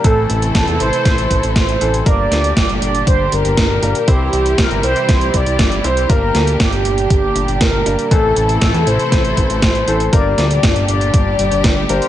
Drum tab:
HH |x-xxxxxxxxxxxxxx|x-xxxxxxx-xxx-xx|x-xxxxxxxxxxxxxx|x-xxxxxxx-xxx-xx|
SD |----o---o---o---|--o-o-------o---|----o---o---o---|--o-o-------o---|
BD |o---o---o-o-o---|o---o---o---o---|o---o---o-o-o---|o---o---o---o---|

HH |x-xxxxxxxxxxxxxx|x-xxxxxxx-xxx-xx|
SD |----o---o---o---|--o-o-------o---|
BD |o---o---o-o-o---|o---o---o---o---|